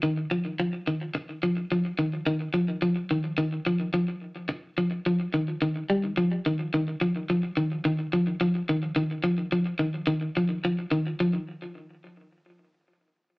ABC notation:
X:1
M:4/4
L:1/8
Q:"Swing 16ths" 1/4=108
K:Ebmix
V:1 name="Clean electric guitar" clef=bass
E, F, F, E, z F, F, E, | E, F, F, E, E, F, F, z | z F, F, E, E, G, F, E, | E, F, F, E, E, F, F, E, |
E, F, F, E, E, F, F, E, | F, z6 z |]